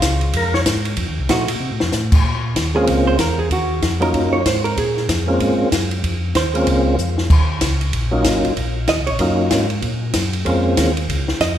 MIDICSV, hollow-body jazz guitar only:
0, 0, Header, 1, 2, 480
1, 0, Start_track
1, 0, Key_signature, -5, "minor"
1, 0, Tempo, 315956
1, 1480, Time_signature, 4, 2, 24, 8
1, 17592, End_track
2, 0, Start_track
2, 0, Title_t, "Hollow-body jazz guitar"
2, 0, Program_c, 0, 26
2, 0, Note_on_c, 0, 56, 52
2, 0, Note_on_c, 0, 61, 62
2, 0, Note_on_c, 0, 65, 66
2, 885, Note_off_c, 0, 56, 0
2, 890, Note_off_c, 0, 61, 0
2, 894, Note_off_c, 0, 65, 0
2, 1965, Note_on_c, 0, 53, 62
2, 1973, Note_on_c, 0, 57, 66
2, 1981, Note_on_c, 0, 66, 82
2, 1982, Note_on_c, 0, 63, 68
2, 2227, Note_off_c, 0, 53, 0
2, 2231, Note_off_c, 0, 57, 0
2, 2235, Note_off_c, 0, 66, 0
2, 2236, Note_off_c, 0, 63, 0
2, 4190, Note_on_c, 0, 68, 74
2, 4631, Note_off_c, 0, 68, 0
2, 4669, Note_on_c, 0, 72, 91
2, 4844, Note_off_c, 0, 72, 0
2, 4868, Note_on_c, 0, 70, 80
2, 5142, Note_off_c, 0, 70, 0
2, 5149, Note_on_c, 0, 68, 76
2, 5324, Note_off_c, 0, 68, 0
2, 5354, Note_on_c, 0, 66, 67
2, 5787, Note_off_c, 0, 66, 0
2, 6114, Note_on_c, 0, 70, 81
2, 6554, Note_off_c, 0, 70, 0
2, 6574, Note_on_c, 0, 73, 95
2, 6757, Note_off_c, 0, 73, 0
2, 6780, Note_on_c, 0, 72, 74
2, 7048, Note_off_c, 0, 72, 0
2, 7054, Note_on_c, 0, 70, 84
2, 7237, Note_off_c, 0, 70, 0
2, 7265, Note_on_c, 0, 68, 75
2, 7703, Note_off_c, 0, 68, 0
2, 9671, Note_on_c, 0, 72, 70
2, 9968, Note_off_c, 0, 72, 0
2, 9968, Note_on_c, 0, 70, 88
2, 10135, Note_off_c, 0, 70, 0
2, 13505, Note_on_c, 0, 75, 83
2, 13767, Note_off_c, 0, 75, 0
2, 13773, Note_on_c, 0, 73, 90
2, 13957, Note_off_c, 0, 73, 0
2, 17333, Note_on_c, 0, 75, 91
2, 17591, Note_off_c, 0, 75, 0
2, 17592, End_track
0, 0, End_of_file